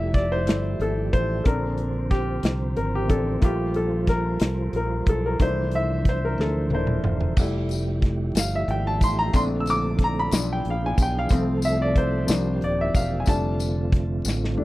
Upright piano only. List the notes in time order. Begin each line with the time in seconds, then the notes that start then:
Already playing: G3 A3 E4 E5
0.14 D5
0.32 C5
0.47 G3 A3 E4
0.82 A4
1.13 C5
1.44 C4 D4 A4 A#4
2.11 G4
2.77 A#4
2.95 G4
3.08 A3 C4 D4 A4
3.40 A3 A#3 F4
3.45 G4
3.76 A4
4.09 A#4
4.76 A#4
5.09 A4
5.26 A#4
5.40 A3 A#3 D4 E4 C5
5.75 E5
6.09 C5
6.25 A#4
6.41 A4
6.72 A3 A#3 D4 E4 C5
7.39 G3 A3 E4
8.39 F5
8.55 E5
8.71 G5
8.87 A5
9.04 C6
9.19 A#5
9.33 A3 C4 D4 C6
9.60 E6
9.70 D6
10.04 A#5
10.19 B5
10.32 F3 G#3 D4
10.53 G5
10.70 F5
10.86 G#5
11.02 G5
11.19 F5
11.31 F3 A3 C4
11.65 E5
11.82 D5
11.98 C5
12.26 F3 A#3 D4
12.64 D5
12.81 E5
12.96 F5
13.20 G#5
13.26 G3 A3 D4 A5
14.57 G3 A3 D4